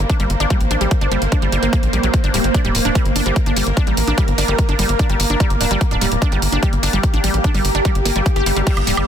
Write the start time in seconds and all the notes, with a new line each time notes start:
Already playing: A#3 C5
0.10 D4, kick, closed hi-hat
0.20 G1 G3, closed hi-hat
0.30 G1, closed hi-hat
0.40 G1 D4, closed hi-hat
0.50 G3, kick, closed hi-hat
0.61 A1, closed hi-hat
0.71 A1 D4, closed hi-hat
0.81 A1 G3, closed hi-hat
0.91 kick, closed hi-hat
1.01 G1 D4, closed hi-hat
1.12 G1 G3, closed hi-hat
1.22 G1, closed hi-hat
1.32 D4, kick, closed hi-hat
1.42 G1 G3, closed hi-hat
1.52 G1 G3, closed hi-hat
1.63 G1 A#3, closed hi-hat
1.73 A#3, kick, closed hi-hat
1.83 A#1, closed hi-hat
1.93 A#1 G3, closed hi-hat
2.03 A#1 F#3, closed hi-hat
2.14 A#4, kick, closed hi-hat
2.24 G1 D4, closed hi-hat
2.34 D1 G3, open hi-hat
2.44 G1, closed hi-hat
2.54 D4, kick, closed hi-hat
2.65 D1 G3, closed hi-hat
2.75 D1, open hi-hat
2.85 D1 D4, closed hi-hat
2.95 G3, kick, closed hi-hat
3.06 G1, closed hi-hat
3.16 G1 D4, open hi-hat
3.26 G1 G3, closed hi-hat
3.36 kick, closed hi-hat
3.46 G1 D4, closed hi-hat
3.56 G1 G3, open hi-hat
3.67 G1, closed hi-hat
3.77 D4, kick, closed hi-hat
3.87 A1 G3, closed hi-hat
3.97 A1, open hi-hat
4.07 A1 D4, closed hi-hat
4.18 G3, kick, closed hi-hat
4.28 G1, closed hi-hat
4.38 G1 D4, open hi-hat
4.48 G1 G3, closed hi-hat
4.59 kick, closed hi-hat
4.69 G1 D4, closed hi-hat
4.79 G1 G3, open hi-hat
4.89 G1, closed hi-hat
4.99 D4, kick, closed hi-hat
5.10 G1 G3, closed hi-hat
5.20 G1, open hi-hat
5.30 G1 D4, closed hi-hat
5.40 G3 G4, kick, closed hi-hat
5.50 G1, closed hi-hat
5.61 D1 D4, open hi-hat
5.71 G1 G3, closed hi-hat
5.81 kick, closed hi-hat
5.91 D1 D4, closed hi-hat
6.01 D1 G3, open hi-hat
6.12 D1, closed hi-hat
6.22 D4, kick, closed hi-hat
6.32 G1 G3, closed hi-hat
6.42 G1, open hi-hat
6.52 G1 D4, closed hi-hat
6.63 G3, kick, closed hi-hat
6.73 G1, closed hi-hat
6.83 G1 D4, open hi-hat
6.93 G1 G3, closed hi-hat
7.03 kick, closed hi-hat
7.14 A1 D4, closed hi-hat
7.24 A1 G3, open hi-hat
7.34 A1, closed hi-hat
7.44 D4, kick, closed hi-hat
7.54 G1 G3, open hi-hat
7.65 G1, open hi-hat
7.75 G1 D4, closed hi-hat
7.85 G3, kick, closed hi-hat
7.95 G1, closed hi-hat
8.05 G1 A#3, open hi-hat
8.16 G1 G3, closed hi-hat
8.26 kick, closed hi-hat
8.36 G1 G4, closed hi-hat
8.46 G1 G3, open hi-hat
8.56 G1 G3, closed hi-hat
8.67 G3 D4 D5, kick, closed hi-hat, crash
8.77 G1, closed hi-hat, high woodblock
8.87 D1 G3, open hi-hat
8.97 G1 G3, closed hi-hat, high woodblock